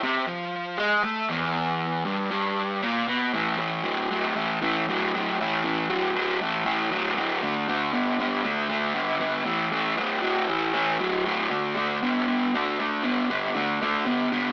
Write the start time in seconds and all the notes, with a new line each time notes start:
0.03 C3
0.27 F3
0.78 G#3
1.04 A3
1.29 E2
2.05 G2
2.31 G2
2.82 A#2
3.08 B2
3.33 A2 E3
3.58 A2 E3
3.84 A2 F#3
4.11 A2 F#3
4.36 A2 E3
4.62 A2 E3
4.88 A2 F#3
5.14 A2 F#3
5.41 A2 E3
5.64 A2 E3
5.89 A2 F#3
6.16 A2 F#3
6.41 A2 E3
6.65 A2 E3
6.91 A2 F#3
7.17 A2 F#3
7.42 D3 A3
7.68 D3 A3
7.94 D3 B3
8.20 D3 B3
8.45 D3 A3
8.70 D3 A3
8.95 D3 B3
9.20 D3 B3
9.45 A2 E3
9.72 A2 E3
9.98 A2 F#3
10.22 A2 F#3
10.48 A2 E3
10.74 A2 E3
11.00 A2 F#3
11.25 A2 F#3
11.50 D3 A3
11.75 D3 A3
12.03 D3 B3
12.28 D3 B3
12.54 D3 A3
12.79 D3 A3
13.03 D3 B3
13.30 D3 B3
13.55 D3 A3
13.81 D3 A3
14.06 D3 B3
14.32 D3 B3